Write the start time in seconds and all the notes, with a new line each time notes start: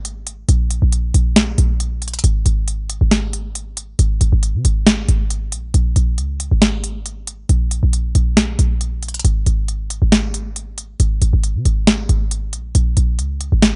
Already playing: G#1
0.05 closed hi-hat
0.27 closed hi-hat
0.49 A#1, closed hi-hat
0.71 closed hi-hat
0.82 A#1
0.92 closed hi-hat
1.14 A#1, closed hi-hat
1.36 snare, closed hi-hat
1.58 A#1, closed hi-hat
1.80 closed hi-hat
2.02 closed hi-hat, open hi-hat
2.08 closed hi-hat
2.14 closed hi-hat
2.19 closed hi-hat
2.24 G#1, closed hi-hat
2.46 G#1, closed hi-hat
2.68 closed hi-hat
2.90 closed hi-hat
3.01 G#1
3.11 snare, closed hi-hat
3.33 closed hi-hat
3.55 closed hi-hat
3.77 closed hi-hat
3.99 G#1, closed hi-hat
4.21 G#1, closed hi-hat
4.33 G#1
4.43 closed hi-hat
4.54 C3
4.65 G#1, closed hi-hat
4.87 snare, closed hi-hat
5.09 G#1, closed hi-hat
5.30 closed hi-hat
5.52 A#1, closed hi-hat
5.74 A#1, closed hi-hat
5.96 A#1, closed hi-hat
6.18 C#2, closed hi-hat
6.40 closed hi-hat
6.51 G#1
6.62 snare, closed hi-hat
6.84 closed hi-hat
7.06 closed hi-hat
7.27 closed hi-hat
7.49 A#1, closed hi-hat
7.71 closed hi-hat
7.83 A#1
7.93 closed hi-hat
8.15 A#1, closed hi-hat
8.37 snare, closed hi-hat
8.59 A#1, closed hi-hat
8.81 closed hi-hat
9.03 closed hi-hat, open hi-hat
9.08 closed hi-hat
9.14 closed hi-hat
9.19 closed hi-hat
9.25 G#1, closed hi-hat
9.46 G#1, closed hi-hat
9.68 closed hi-hat
9.90 closed hi-hat
10.02 G#1
10.12 snare, closed hi-hat
10.34 closed hi-hat
10.56 closed hi-hat
10.78 closed hi-hat
11.00 G#1, closed hi-hat
11.22 G#1, closed hi-hat
11.33 G#1
11.44 closed hi-hat
11.55 C3
11.65 G#1, closed hi-hat
11.87 snare, closed hi-hat
12.09 G#1, closed hi-hat
12.31 closed hi-hat
12.53 A#1, closed hi-hat
12.75 A#1, closed hi-hat
12.97 A#1, closed hi-hat
13.19 C#2, closed hi-hat
13.41 closed hi-hat
13.52 G#1
13.62 snare, closed hi-hat